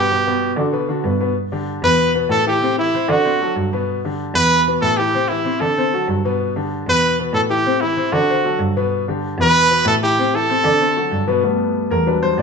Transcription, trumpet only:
0, 0, Header, 1, 2, 480
1, 0, Start_track
1, 0, Key_signature, 1, "major"
1, 0, Tempo, 314961
1, 152, Time_signature, 4, 2, 24, 8
1, 18931, End_track
2, 0, Start_track
2, 0, Title_t, "Trumpet"
2, 0, Program_c, 0, 56
2, 0, Note_on_c, 0, 67, 93
2, 816, Note_off_c, 0, 67, 0
2, 2800, Note_on_c, 0, 71, 109
2, 3242, Note_off_c, 0, 71, 0
2, 3524, Note_on_c, 0, 69, 98
2, 3741, Note_off_c, 0, 69, 0
2, 3774, Note_on_c, 0, 67, 93
2, 4210, Note_off_c, 0, 67, 0
2, 4254, Note_on_c, 0, 64, 91
2, 4728, Note_on_c, 0, 66, 93
2, 4751, Note_off_c, 0, 64, 0
2, 5439, Note_off_c, 0, 66, 0
2, 6632, Note_on_c, 0, 71, 117
2, 7078, Note_off_c, 0, 71, 0
2, 7341, Note_on_c, 0, 69, 102
2, 7576, Note_on_c, 0, 67, 97
2, 7599, Note_off_c, 0, 69, 0
2, 8052, Note_on_c, 0, 64, 87
2, 8075, Note_off_c, 0, 67, 0
2, 8550, Note_on_c, 0, 69, 89
2, 8572, Note_off_c, 0, 64, 0
2, 9270, Note_off_c, 0, 69, 0
2, 10502, Note_on_c, 0, 71, 106
2, 10935, Note_off_c, 0, 71, 0
2, 11194, Note_on_c, 0, 69, 94
2, 11302, Note_off_c, 0, 69, 0
2, 11433, Note_on_c, 0, 67, 91
2, 11901, Note_on_c, 0, 64, 89
2, 11924, Note_off_c, 0, 67, 0
2, 12388, Note_on_c, 0, 66, 85
2, 12411, Note_off_c, 0, 64, 0
2, 13110, Note_off_c, 0, 66, 0
2, 14347, Note_on_c, 0, 71, 121
2, 15001, Note_off_c, 0, 71, 0
2, 15053, Note_on_c, 0, 69, 97
2, 15156, Note_off_c, 0, 69, 0
2, 15290, Note_on_c, 0, 67, 91
2, 15774, Note_on_c, 0, 69, 95
2, 15797, Note_off_c, 0, 67, 0
2, 17204, Note_off_c, 0, 69, 0
2, 18931, End_track
0, 0, End_of_file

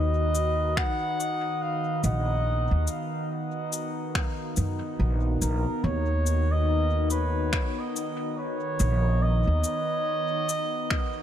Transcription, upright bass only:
0, 0, Header, 1, 2, 480
1, 0, Start_track
1, 0, Tempo, 845070
1, 1398, Time_signature, 4, 2, 24, 8
1, 6377, End_track
2, 0, Start_track
2, 0, Title_t, "Upright bass"
2, 0, Program_c, 0, 32
2, 0, Note_on_c, 0, 39, 100
2, 420, Note_off_c, 0, 39, 0
2, 1157, Note_on_c, 0, 34, 101
2, 1513, Note_off_c, 0, 34, 0
2, 1540, Note_on_c, 0, 39, 77
2, 1626, Note_off_c, 0, 39, 0
2, 2597, Note_on_c, 0, 42, 82
2, 2724, Note_off_c, 0, 42, 0
2, 2837, Note_on_c, 0, 34, 88
2, 3054, Note_off_c, 0, 34, 0
2, 3076, Note_on_c, 0, 34, 86
2, 3203, Note_off_c, 0, 34, 0
2, 3316, Note_on_c, 0, 39, 101
2, 4259, Note_off_c, 0, 39, 0
2, 4998, Note_on_c, 0, 34, 103
2, 5354, Note_off_c, 0, 34, 0
2, 5381, Note_on_c, 0, 39, 80
2, 5466, Note_off_c, 0, 39, 0
2, 6377, End_track
0, 0, End_of_file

